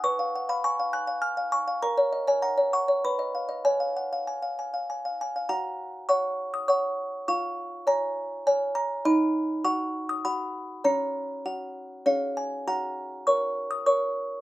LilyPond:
\new Staff \with { instrumentName = "Music box" } { \time 3/4 \key fis \major \tempo 4 = 100 << { cis'''8. b''16 cis'''8 fis'''8 eis'''8 cis'''8 | ais''8. gis''16 ais''8 cis'''8 b''4 | gis''2~ gis''8 gis''8 | ais''4 cis'''8. dis'''16 cis'''4 |
cis'''4 ais''4 gis''8 ais''8 | b''4 cis'''8. dis'''16 b''4 | ais''2~ ais''8 gis''8 | ais''4 cis'''8. dis'''16 cis'''4 | } \\ { b'16 eis''16 fis''16 eis''16 gis''16 eis''16 gis''16 eis''16 gis''16 eis''16 gis''16 eis''16 | ais'16 cis''16 dis''16 cis''16 fis''16 cis''16 fis''16 cis''16 b'16 dis''16 eis''16 dis''16 | cis''16 eis''16 fis''16 eis''16 gis''16 eis''16 gis''16 eis''16 gis''16 eis''8 eis''16 | <fis' fis''>4 <cis'' fis''>4 <cis'' fis''>4 |
<eis' eis''>4 <cis'' gis''>4 cis''4 | <dis' dis''>4 <fis' fis''>4 <fis' fis''>4 | <cis' cis''>4 <fis' fis''>4 <cis' gis' cis'' eis''>4 | <fis' fis''>4 <ais' cis''>4 <ais' cis''>4 | } >> }